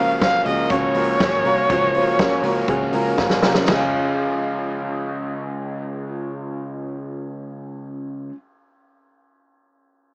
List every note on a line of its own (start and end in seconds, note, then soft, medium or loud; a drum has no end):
0.00 0.31 C#2 loud
0.00 1.70 F3 medium
0.00 0.45 A#3 medium
0.00 0.16 C#4 medium
0.00 0.20 C#4 soft
0.00 0.21 C#4 medium
0.00 0.17 F4 medium
0.00 0.21 F4 soft
0.00 0.17 F#4 medium
0.00 0.17 A#4 medium
0.00 0.21 A#4 medium
0.00 0.21 F5 loud
0.21 0.46 F#3 medium
0.21 0.41 C#4 medium
0.21 0.71 C#4 medium
0.21 0.46 C#4 medium
0.21 0.41 F4 medium
0.21 0.45 F4 medium
0.21 0.41 F#4 medium
0.21 0.44 A#4 medium
0.21 0.41 C5 loud
0.21 0.45 F5 loud
0.21 kick loud
0.21 snare loud
0.21 hi-hat pedal medium
0.21 ride medium
0.45 0.66 C#2 loud
0.45 0.95 A#3 medium
0.45 0.66 C#4 medium
0.45 0.69 C#4 soft
0.45 0.66 F4 medium
0.45 0.70 F4 medium
0.45 0.66 F#4 medium
0.45 0.66 G#4 medium
0.45 0.70 A#4 medium
0.45 0.72 D#5 loud
0.45 open hi-hat medium
0.70 0.91 C#2 loud
0.70 0.95 C#3 loud
0.70 0.95 F#3 loud
0.70 0.96 C#4 loud
0.70 0.91 C#4 loud
0.70 1.20 C#4 medium
0.70 0.91 F4 loud
0.70 0.95 F4 loud
0.70 0.91 F#4 loud
0.70 0.93 A#4 loud
0.70 3.18 C#5 loud
0.70 0.91 C#5 loud
0.70 kick loud
0.70 hi-hat pedal medium
0.70 ride medium
0.94 1.16 C#2 loud
0.94 1.44 A#3 medium
0.94 1.15 C#4 medium
0.94 1.19 C#4 medium
0.94 1.20 F4 medium
0.94 1.15 F4 medium
0.94 1.16 F#4 medium
0.94 1.20 A#4 medium
0.94 1.16 A#4 medium
0.94 open hi-hat medium
1.19 1.41 G#1 medium
1.19 1.45 F#3 medium
1.19 1.45 C#4 medium
1.19 2.20 C#4 medium
1.19 1.41 C#4 medium
1.19 1.45 F4 medium
1.19 1.41 F4 medium
1.19 1.41 F#4 medium
1.19 1.44 A#4 medium
1.19 1.41 C#5 medium
1.19 kick loud
1.19 snare loud
1.19 hi-hat pedal medium
1.19 ride medium
1.44 1.65 C2 loud
1.44 1.94 A#3 medium
1.44 1.65 C#4 loud
1.44 1.69 C#4 medium
1.44 1.69 F4 medium
1.44 1.65 F4 medium
1.44 1.65 F#4 medium
1.44 1.70 A#4 medium
1.44 1.65 A#4 loud
1.44 open hi-hat medium
1.69 2.29 C#2 loud
1.69 1.94 C#3 loud
1.69 5.20 F3 medium
1.69 1.95 F#3 loud
1.69 1.95 C#4 loud
1.69 1.90 C#4 loud
1.69 1.94 F4 loud
1.69 1.90 F4 loud
1.69 1.90 F#4 loud
1.69 1.93 A#4 loud
1.69 1.90 C#5 loud
1.69 kick loud
1.69 hi-hat pedal medium
1.69 ride medium
1.94 2.44 A#3 medium
1.94 2.14 C#4 loud
1.94 2.18 C#4 medium
1.94 2.14 F4 medium
1.94 2.19 F4 medium
1.94 2.14 F#4 medium
1.94 2.19 A#4 medium
1.94 2.15 C5 loud
1.94 open hi-hat medium
2.19 2.44 F#3 medium
2.19 2.44 C#4 medium
2.19 2.39 C#4 loud
2.19 2.69 C#4 medium
2.19 2.39 F4 medium
2.19 2.43 F4 medium
2.19 2.39 F#4 medium
2.19 2.40 A#4 loud
2.19 2.42 A#4 medium
2.19 kick loud
2.19 snare loud
2.19 hi-hat pedal medium
2.19 ride medium
2.43 2.64 C#2 medium
2.43 2.93 A#3 medium
2.43 2.64 C#4 medium
2.43 2.68 C#4 medium
2.43 2.64 F4 medium
2.43 2.68 F4 medium
2.43 2.64 F#4 medium
2.43 2.68 A#4 medium
2.43 2.64 A#4 medium
2.43 open hi-hat medium
2.68 2.89 C#2 medium
2.68 2.93 C#3 loud
2.68 2.94 F#3 loud
2.68 2.89 C#4 loud
2.68 3.19 C#4 medium
2.68 2.94 C#4 loud
2.68 2.89 F4 loud
2.68 2.93 F4 loud
2.68 2.89 F#4 loud
2.68 2.89 G#4 loud
2.68 2.91 A#4 loud
2.68 kick loud
2.68 hi-hat pedal medium
2.68 ride medium
2.92 3.14 C#2 loud
2.92 3.43 A#3 medium
2.92 3.13 C#4 medium
2.92 3.18 C#4 medium
2.92 3.18 F4 medium
2.92 3.14 F4 medium
2.92 3.14 F#4 medium
2.92 3.18 A#4 medium
2.92 3.13 A#4 loud
2.92 open hi-hat loud
3.18 3.38 G#1 loud
3.18 3.43 F#3 medium
3.18 3.38 C#4 medium
3.18 3.43 C#4 medium
3.18 3.71 C#4 medium
3.18 3.38 F4 medium
3.18 3.43 F4 medium
3.18 3.38 F#4 medium
3.18 3.38 A#4 loud
3.18 3.42 A#4 medium
3.18 kick loud
3.18 snare medium
3.30 snare medium
3.43 3.63 C2 medium
3.43 3.65 A#3 medium
3.43 3.63 C#4 medium
3.43 3.68 C#4 medium
3.43 3.63 F4 medium
3.43 3.68 F4 medium
3.43 3.63 F#4 medium
3.43 3.68 A#4 medium
3.43 3.63 A#4 loud
3.43 snare loud
3.55 snare loud
3.65 8.28 C#2 loud
3.65 8.29 C#3 loud
3.65 8.29 G#3 medium
3.65 8.31 G#3 loud
3.65 8.27 C#4 loud
3.65 snare loud
3.65 floor tom loud
3.65 ride bell loud
3.69 8.33 C#4 medium
3.69 8.36 C#4 medium
3.69 8.29 F4 medium
3.69 8.35 F4 medium
3.69 8.31 G#4 medium
3.69 8.37 G#4 loud
3.77 8.41 F4 medium